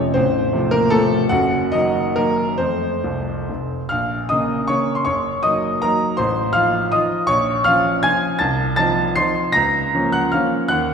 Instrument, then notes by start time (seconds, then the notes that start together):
grand piano
Already playing: F1 F2 C3 F3 A3 C#4 C#5
0.14 A0 A1 C4 C5
0.53 C3 F3 A3
0.71 A#3 A#4
0.90 C3 F3 A3 A4
1.29 F#1 F#2 F#4 F#5
1.72 D#3 F#3 A#3 D#4 D#5
2.16 D#3 F#3 A#3 A#4
2.58 F2 A3 C4 C5
3.04 C2
3.49 F1
3.89 A#1 F5 F6
4.29 C#3 A#3 D#5 D#6
4.68 C#3 A#3 C#5 C#6
4.95 C6
5.05 F#1 C#5 C#6
5.43 F#3 A#3 D#4 D#5 D#6
5.82 F#3 A#3 D#4 A#4 A#5
6.17 A1 C5 C6
6.53 F3 D#4 F4 F5 F6
6.92 F3 D#4 F4 D#5 D#6
7.27 A#1 C#5 C#6
7.64 F3 C#4 F4 F5 F6
8.03 F3 C#4 F4 G#5 G#6
8.39 C2 A5 A6
8.76 F3 C4 D#4 A5 A6
9.16 F3 C4 D#4 C6 C7
9.52 C#2 A#5 A#6
9.95 F3 A#3 C#4
10.12 F#5 F#6
10.32 F3 A#3 C#4 F5 F6
10.68 D#2 F#5 F#6